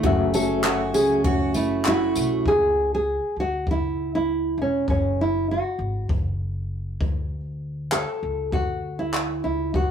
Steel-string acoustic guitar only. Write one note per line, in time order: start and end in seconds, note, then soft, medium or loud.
0.00 2.46 F#2 medium
0.00 1.54 A3 medium
0.00 0.63 A4 medium
0.34 0.94 C#4 medium
0.64 1.23 F#4 medium
0.94 3.02 C#4 medium
1.24 1.84 F#4 medium
1.55 2.15 A3 medium
1.85 2.52 F#4 medium
2.17 2.52 A3 medium